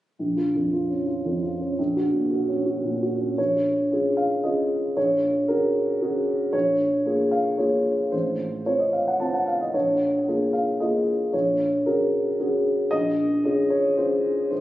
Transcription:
upright piano
0.19 A#1
0.37 F4
0.55 F2
0.73 F4
0.90 C#4
1.07 F4
1.25 F2
1.43 F4
1.61 C#4
1.79 A#1
1.97 F#4
2.13 A#2
2.31 F#4
2.48 C#4
2.66 F#4
2.84 A#2
3.03 F#4
3.21 C#4
3.38 A#1 C#5
3.92 C#4 F4 G#4
4.17 F5
4.44 C#4 F4 G#4 D#5
4.97 A#1 C#5
5.48 C#4 F#4 G#4 A#4
6.01 C#4 F#4 G#4
6.53 A#1 C#5
7.05 A#3 F4 G#4
7.31 F5
7.58 A#3 F4 G#4 C#5
8.12 A1 C5
8.66 C4 F4 C5 C#5
8.79 D#5
8.93 F5
9.07 F#5
9.20 C4 F4 C5 A5
9.34 F#5
9.47 F5
9.61 D#5
9.74 A#1 C#5
10.27 A#3 F4 G#4
10.53 F5
10.80 A#3 F4 G#4 D#5
11.33 A#1 C#5
11.86 C#4 F#4 G#4 A#4
12.40 C#4 F#4 G#4
12.91 A#1 D#5
13.45 C#4 F4 G#4
13.70 C#5
13.97 C#4 F4 G#4 C5
14.51 A#1 C5

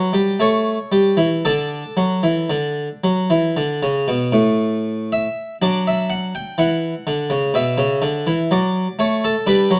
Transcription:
harpsichord
Already playing: F#3 B4
0.13 G3
0.40 A3 C#5
0.92 G3
1.17 E3
1.45 D3 A4 D5
1.97 F#3
2.23 E3
2.50 D3
3.04 F#3
3.30 E3
3.57 D3
3.83 C#3
4.08 B2
4.32 A2
5.12 E5
5.62 F#3 D4 D5
5.87 E5
6.10 F#5
6.35 G5
6.58 E3 F#5
7.07 D3
7.30 C#3
7.54 B2 E5
7.78 C#3
8.02 D3
8.27 E3
8.51 F#3 D5
8.99 A3 C#5
9.24 A4
9.46 G3 D4 B4
9.71 F#3

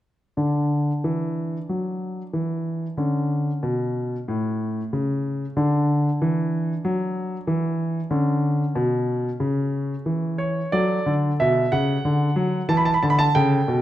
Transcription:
grand piano
0.37 D3 D4
1.04 E3
1.69 F#3
2.33 E3
2.97 D3 C#4
3.63 B2
4.28 A2
4.93 C#3
5.57 D3 D4
6.22 E3
6.85 F#3
7.47 E3
8.10 D3 C#4
8.75 B2
9.40 C#3
10.06 E3
10.38 C#5
10.72 F#3 A4 D5
11.06 D3
11.40 B2 E5
11.72 C#3 F#5
12.05 D3
12.36 F#3
12.69 E3 A5
12.77 B5
12.85 A5
12.94 B5
13.03 D3 A5
13.10 B5
13.19 A5
13.35 C#3 A4 G5
13.68 B2

